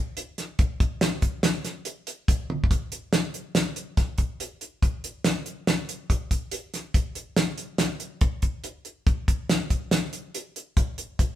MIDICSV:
0, 0, Header, 1, 2, 480
1, 0, Start_track
1, 0, Tempo, 423729
1, 673, Time_signature, 5, 2, 24, 8
1, 12862, End_track
2, 0, Start_track
2, 0, Title_t, "Drums"
2, 190, Note_on_c, 9, 42, 79
2, 303, Note_off_c, 9, 42, 0
2, 431, Note_on_c, 9, 38, 31
2, 431, Note_on_c, 9, 42, 54
2, 545, Note_off_c, 9, 38, 0
2, 545, Note_off_c, 9, 42, 0
2, 666, Note_on_c, 9, 42, 70
2, 669, Note_on_c, 9, 36, 101
2, 779, Note_off_c, 9, 42, 0
2, 782, Note_off_c, 9, 36, 0
2, 910, Note_on_c, 9, 36, 86
2, 910, Note_on_c, 9, 42, 72
2, 1023, Note_off_c, 9, 36, 0
2, 1023, Note_off_c, 9, 42, 0
2, 1146, Note_on_c, 9, 38, 118
2, 1146, Note_on_c, 9, 42, 86
2, 1259, Note_off_c, 9, 38, 0
2, 1259, Note_off_c, 9, 42, 0
2, 1384, Note_on_c, 9, 42, 60
2, 1386, Note_on_c, 9, 36, 77
2, 1497, Note_off_c, 9, 42, 0
2, 1499, Note_off_c, 9, 36, 0
2, 1621, Note_on_c, 9, 38, 118
2, 1621, Note_on_c, 9, 42, 85
2, 1734, Note_off_c, 9, 38, 0
2, 1734, Note_off_c, 9, 42, 0
2, 1864, Note_on_c, 9, 38, 33
2, 1864, Note_on_c, 9, 42, 59
2, 1977, Note_off_c, 9, 38, 0
2, 1977, Note_off_c, 9, 42, 0
2, 2097, Note_on_c, 9, 42, 79
2, 2210, Note_off_c, 9, 42, 0
2, 2344, Note_on_c, 9, 42, 71
2, 2457, Note_off_c, 9, 42, 0
2, 2586, Note_on_c, 9, 36, 104
2, 2589, Note_on_c, 9, 42, 89
2, 2700, Note_off_c, 9, 36, 0
2, 2703, Note_off_c, 9, 42, 0
2, 2831, Note_on_c, 9, 48, 56
2, 2944, Note_off_c, 9, 48, 0
2, 2986, Note_on_c, 9, 36, 75
2, 3067, Note_off_c, 9, 36, 0
2, 3067, Note_on_c, 9, 36, 83
2, 3070, Note_on_c, 9, 42, 75
2, 3180, Note_off_c, 9, 36, 0
2, 3183, Note_off_c, 9, 42, 0
2, 3306, Note_on_c, 9, 42, 59
2, 3419, Note_off_c, 9, 42, 0
2, 3541, Note_on_c, 9, 38, 98
2, 3541, Note_on_c, 9, 42, 78
2, 3654, Note_off_c, 9, 38, 0
2, 3654, Note_off_c, 9, 42, 0
2, 3784, Note_on_c, 9, 42, 52
2, 3898, Note_off_c, 9, 42, 0
2, 4020, Note_on_c, 9, 38, 99
2, 4020, Note_on_c, 9, 42, 78
2, 4133, Note_off_c, 9, 38, 0
2, 4133, Note_off_c, 9, 42, 0
2, 4261, Note_on_c, 9, 42, 53
2, 4375, Note_off_c, 9, 42, 0
2, 4500, Note_on_c, 9, 38, 29
2, 4500, Note_on_c, 9, 42, 59
2, 4502, Note_on_c, 9, 36, 86
2, 4614, Note_off_c, 9, 38, 0
2, 4614, Note_off_c, 9, 42, 0
2, 4615, Note_off_c, 9, 36, 0
2, 4732, Note_on_c, 9, 42, 56
2, 4740, Note_on_c, 9, 36, 72
2, 4845, Note_off_c, 9, 42, 0
2, 4853, Note_off_c, 9, 36, 0
2, 4986, Note_on_c, 9, 42, 71
2, 5099, Note_off_c, 9, 42, 0
2, 5223, Note_on_c, 9, 42, 46
2, 5337, Note_off_c, 9, 42, 0
2, 5466, Note_on_c, 9, 36, 91
2, 5466, Note_on_c, 9, 42, 65
2, 5579, Note_off_c, 9, 36, 0
2, 5579, Note_off_c, 9, 42, 0
2, 5709, Note_on_c, 9, 42, 61
2, 5822, Note_off_c, 9, 42, 0
2, 5942, Note_on_c, 9, 38, 100
2, 5942, Note_on_c, 9, 42, 79
2, 6055, Note_off_c, 9, 38, 0
2, 6055, Note_off_c, 9, 42, 0
2, 6184, Note_on_c, 9, 42, 54
2, 6297, Note_off_c, 9, 42, 0
2, 6427, Note_on_c, 9, 38, 99
2, 6427, Note_on_c, 9, 42, 76
2, 6540, Note_off_c, 9, 38, 0
2, 6540, Note_off_c, 9, 42, 0
2, 6671, Note_on_c, 9, 42, 61
2, 6784, Note_off_c, 9, 42, 0
2, 6908, Note_on_c, 9, 36, 80
2, 6913, Note_on_c, 9, 42, 73
2, 7021, Note_off_c, 9, 36, 0
2, 7026, Note_off_c, 9, 42, 0
2, 7147, Note_on_c, 9, 36, 67
2, 7148, Note_on_c, 9, 42, 64
2, 7260, Note_off_c, 9, 36, 0
2, 7261, Note_off_c, 9, 42, 0
2, 7380, Note_on_c, 9, 42, 76
2, 7493, Note_off_c, 9, 42, 0
2, 7631, Note_on_c, 9, 38, 31
2, 7631, Note_on_c, 9, 42, 54
2, 7744, Note_off_c, 9, 38, 0
2, 7744, Note_off_c, 9, 42, 0
2, 7866, Note_on_c, 9, 36, 88
2, 7867, Note_on_c, 9, 42, 78
2, 7980, Note_off_c, 9, 36, 0
2, 7980, Note_off_c, 9, 42, 0
2, 8104, Note_on_c, 9, 42, 60
2, 8217, Note_off_c, 9, 42, 0
2, 8343, Note_on_c, 9, 38, 98
2, 8343, Note_on_c, 9, 42, 78
2, 8456, Note_off_c, 9, 38, 0
2, 8456, Note_off_c, 9, 42, 0
2, 8582, Note_on_c, 9, 42, 51
2, 8695, Note_off_c, 9, 42, 0
2, 8817, Note_on_c, 9, 38, 97
2, 8817, Note_on_c, 9, 42, 72
2, 8931, Note_off_c, 9, 38, 0
2, 8931, Note_off_c, 9, 42, 0
2, 9061, Note_on_c, 9, 42, 51
2, 9174, Note_off_c, 9, 42, 0
2, 9299, Note_on_c, 9, 42, 63
2, 9305, Note_on_c, 9, 36, 102
2, 9412, Note_off_c, 9, 42, 0
2, 9418, Note_off_c, 9, 36, 0
2, 9540, Note_on_c, 9, 42, 54
2, 9547, Note_on_c, 9, 36, 68
2, 9653, Note_off_c, 9, 42, 0
2, 9660, Note_off_c, 9, 36, 0
2, 9783, Note_on_c, 9, 42, 70
2, 9896, Note_off_c, 9, 42, 0
2, 10024, Note_on_c, 9, 42, 47
2, 10138, Note_off_c, 9, 42, 0
2, 10270, Note_on_c, 9, 36, 104
2, 10271, Note_on_c, 9, 42, 65
2, 10384, Note_off_c, 9, 36, 0
2, 10384, Note_off_c, 9, 42, 0
2, 10513, Note_on_c, 9, 36, 81
2, 10514, Note_on_c, 9, 42, 61
2, 10626, Note_off_c, 9, 36, 0
2, 10627, Note_off_c, 9, 42, 0
2, 10756, Note_on_c, 9, 38, 111
2, 10756, Note_on_c, 9, 42, 84
2, 10869, Note_off_c, 9, 38, 0
2, 10869, Note_off_c, 9, 42, 0
2, 10992, Note_on_c, 9, 42, 62
2, 10993, Note_on_c, 9, 36, 72
2, 11106, Note_off_c, 9, 42, 0
2, 11107, Note_off_c, 9, 36, 0
2, 11230, Note_on_c, 9, 38, 101
2, 11230, Note_on_c, 9, 42, 80
2, 11343, Note_off_c, 9, 38, 0
2, 11343, Note_off_c, 9, 42, 0
2, 11473, Note_on_c, 9, 42, 51
2, 11586, Note_off_c, 9, 42, 0
2, 11719, Note_on_c, 9, 42, 70
2, 11832, Note_off_c, 9, 42, 0
2, 11962, Note_on_c, 9, 42, 59
2, 12076, Note_off_c, 9, 42, 0
2, 12198, Note_on_c, 9, 36, 95
2, 12198, Note_on_c, 9, 42, 77
2, 12311, Note_off_c, 9, 36, 0
2, 12311, Note_off_c, 9, 42, 0
2, 12438, Note_on_c, 9, 42, 55
2, 12552, Note_off_c, 9, 42, 0
2, 12678, Note_on_c, 9, 36, 80
2, 12679, Note_on_c, 9, 42, 73
2, 12792, Note_off_c, 9, 36, 0
2, 12792, Note_off_c, 9, 42, 0
2, 12862, End_track
0, 0, End_of_file